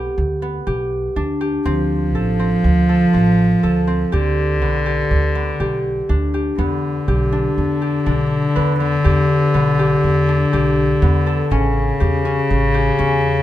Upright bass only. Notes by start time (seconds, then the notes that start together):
0.18 D2
0.67 B1
1.16 D2
1.65 D2
2.15 A1
2.64 D2
3.14 A1
3.64 D2
4.13 D2
4.62 B1
5.11 D2
5.60 B1
6.09 D2
6.58 E2
7.08 B1
7.58 E2
8.07 B1
8.57 E2
9.05 E2
9.55 B1
10.04 E2
10.54 B1
11.02 E2
11.51 A1
12.01 E2
12.50 A1
12.99 E2